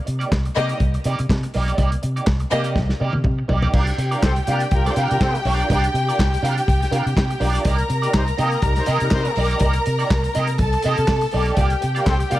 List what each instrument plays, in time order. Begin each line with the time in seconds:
0.05 fingered electric bass C3, muted clean electric guitar stroke, closed hi-hat
0.19 clean electric guitar A#3 D#4 G4 D5, closed hi-hat
0.31 fingered electric bass C2, muted clean electric guitar stroke, kick, snare, clap
0.45 muted clean electric guitar stroke, closed hi-hat
0.55 fingered electric bass C3, violin section A#3 G4 D#5, clean electric guitar A#3 D#4 G4 D5, closed hi-hat
0.69 clean electric guitar A#3 D#4 G4 D5, closed hi-hat
0.80 fingered electric bass C2, kick, closed hi-hat
0.94 muted clean electric guitar stroke, closed hi-hat
1.04 fingered electric bass C3, clean electric guitar A#3 D#4 G4 D5, closed hi-hat
1.19 fingered electric bass C3, muted clean electric guitar stroke, closed hi-hat
1.29 fingered electric bass C3, muted clean electric guitar stroke, kick, snare, clap
1.43 muted clean electric guitar stroke, closed hi-hat
1.54 fingered electric bass B1, clean electric guitar A#3 D#4 G4 D5, open hi-hat
1.68 clean electric guitar A#3 D#4 G4 D5, closed hi-hat
1.77 fingered electric bass C2, clean electric guitar A#3 D#4 G4 D5, kick, closed hi-hat
1.92 muted clean electric guitar stroke, closed hi-hat
2.02 fingered electric bass C3, muted clean electric guitar stroke, closed hi-hat
2.16 clean electric guitar A#3 D#4 G4 D5, closed hi-hat
2.26 fingered electric bass C2, muted clean electric guitar stroke, kick, snare, clap
2.40 muted clean electric guitar stroke, closed hi-hat
2.51 fingered electric bass C3, clean electric guitar A#3 D#4 G4 D5, violin section A#3 G4 D#5, closed hi-hat
2.64 clean electric guitar A#3 D#4 G4 D5, closed hi-hat
2.76 fingered electric bass C2, kick, snare
2.89 muted clean electric guitar stroke, snare
3.00 fingered electric bass C3, clean electric guitar A#3 D#4 G4 D5
3.13 fingered electric bass C3, muted clean electric guitar stroke, high tom
3.24 fingered electric bass C3, muted clean electric guitar stroke, kick, mid tom
3.39 muted clean electric guitar stroke
3.48 fingered electric bass B1, clean electric guitar A#3 D#4 G4 D5, floor tom
3.62 clean electric guitar A#3 D#4 G4 D5, floor tom
3.73 fingered electric bass C2, clean electric guitar D4 F4 A#4 D5, violin section G4 G5, kick, crash
3.87 muted clean electric guitar stroke, closed hi-hat
3.98 fingered electric bass C3, muted clean electric guitar stroke, closed hi-hat
4.11 horn section G3 F4 A#4, clean electric guitar D4 F4 A#4 D5, closed hi-hat
4.23 fingered electric bass C2, horn section C4 A4 C5, muted clean electric guitar stroke, kick, snare, clap
4.36 muted clean electric guitar stroke, closed hi-hat
4.47 fingered electric bass C3, horn section A#3 G4 D5, clean electric guitar D4 F4 A#4 F5, closed hi-hat
4.60 muted clean electric guitar stroke, closed hi-hat
4.71 fingered electric bass C2, horn section G3 F4 A#4, muted clean electric guitar stroke, kick, closed hi-hat
4.86 horn section C4 A4 C5, clean electric guitar D4 F4 A#4 D5, snare, closed hi-hat
4.96 fingered electric bass C3, clean electric guitar D4 F4 A#4 F5, closed hi-hat
5.10 fingered electric bass C3, horn section G3 F4 A#4, muted clean electric guitar stroke, closed hi-hat
5.20 fingered electric bass C3, horn section C4 A4 C5, muted clean electric guitar stroke, kick, snare, clap
5.35 muted clean electric guitar stroke, closed hi-hat
5.45 fingered electric bass B1, clean electric guitar D4 F4 A#4 D5, open hi-hat
5.60 clean electric guitar D4 F4 A#4 D5, closed hi-hat
5.70 fingered electric bass C2, clean electric guitar D4 F4 A#4 D5, kick, closed hi-hat
5.84 muted clean electric guitar stroke, closed hi-hat
5.94 fingered electric bass C3, muted clean electric guitar stroke, closed hi-hat
6.08 clean electric guitar D4 F4 A#4 D5, closed hi-hat
6.19 fingered electric bass C2, muted clean electric guitar stroke, kick, snare, clap
6.33 muted clean electric guitar stroke, closed hi-hat
6.42 fingered electric bass C3, clean electric guitar D4 F4 A#4 F5, closed hi-hat
6.57 muted clean electric guitar stroke, closed hi-hat
6.68 fingered electric bass C2, kick, closed hi-hat
6.80 muted clean electric guitar stroke, snare, closed hi-hat
6.91 fingered electric bass C3, clean electric guitar D4 F4 A#4 F5, closed hi-hat
7.06 fingered electric bass C3, muted clean electric guitar stroke, closed hi-hat
7.16 fingered electric bass C3, muted clean electric guitar stroke, kick, snare, clap
7.30 muted clean electric guitar stroke, closed hi-hat
7.40 fingered electric bass B1, clean electric guitar D4 F4 A#4 D5, open hi-hat
7.54 clean electric guitar D4 F4 A#4 D5, closed hi-hat
7.64 fingered electric bass C2, clean electric guitar A#3 D#4 G4 D5, violin section A#4 A#5, kick, closed hi-hat
7.78 muted clean electric guitar stroke, closed hi-hat
7.88 fingered electric bass C3, muted clean electric guitar stroke, closed hi-hat
8.02 horn section G3 D#4 A#4, clean electric guitar A#3 D#4 G4 D5, closed hi-hat
8.13 fingered electric bass C2, horn section G3 D#4 C5, muted clean electric guitar stroke, kick, snare, clap
8.27 muted clean electric guitar stroke, closed hi-hat
8.37 fingered electric bass C3, clean electric guitar A#3 D#4 G4 D#5, horn section A#3 G4 D#5, closed hi-hat
8.51 muted clean electric guitar stroke, closed hi-hat
8.62 fingered electric bass C2, horn section G3 D#4 A#4, kick, closed hi-hat
8.76 horn section G3 D#4 C5, muted clean electric guitar stroke, snare, closed hi-hat
8.86 fingered electric bass C3, clean electric guitar A#3 D#4 G4 D#5, closed hi-hat
9.00 fingered electric bass C3, horn section G3 D#4 A#4, muted clean electric guitar stroke, closed hi-hat
9.11 fingered electric bass C3, horn section G3 D#4 C5, muted clean electric guitar stroke, kick, snare, clap
9.25 muted clean electric guitar stroke, closed hi-hat
9.36 fingered electric bass B1, clean electric guitar A#3 D#4 G4 D5, open hi-hat
9.50 clean electric guitar A#3 D#4 G4 D5, closed hi-hat
9.60 fingered electric bass C2, clean electric guitar A#3 D#4 G4 D5, kick, closed hi-hat
9.73 muted clean electric guitar stroke, closed hi-hat
9.86 fingered electric bass C3, muted clean electric guitar stroke, closed hi-hat
9.99 clean electric guitar A#3 D#4 G4 D5, closed hi-hat
10.10 fingered electric bass C2, kick, snare, clap
10.23 muted clean electric guitar stroke, closed hi-hat
10.34 fingered electric bass C3, clean electric guitar A#3 D#4 G4 D#5, closed hi-hat
10.47 muted clean electric guitar stroke, closed hi-hat
10.58 fingered electric bass C2, violin section A4 A5, kick, closed hi-hat
10.73 muted clean electric guitar stroke, closed hi-hat
10.82 fingered electric bass C3, clean electric guitar A#3 D#4 G4 D#5, closed hi-hat
10.97 fingered electric bass C3, muted clean electric guitar stroke, closed hi-hat
11.08 fingered electric bass C3, muted clean electric guitar stroke, kick, snare, clap
11.21 muted clean electric guitar stroke, closed hi-hat
11.31 fingered electric bass B1, clean electric guitar A#3 D#4 G4 D5, open hi-hat
11.46 clean electric guitar A#3 D#4 G4 D5, closed hi-hat
11.56 fingered electric bass C2, clean electric guitar A#3 F4 G4 D5, violin section G4 G5, kick, closed hi-hat
11.70 muted clean electric guitar stroke, closed hi-hat
11.81 fingered electric bass C3, muted clean electric guitar stroke, closed hi-hat
11.95 horn section G3 F4 A#4, clean electric guitar A#3 F4 G4 D5, closed hi-hat
12.05 fingered electric bass C2, horn section C4 A4 C5, muted clean electric guitar stroke, kick, snare, clap
12.20 muted clean electric guitar stroke, closed hi-hat
12.30 fingered electric bass C3, clean electric guitar A#3 F4 G4 F5, horn section A#3 G4 D5, closed hi-hat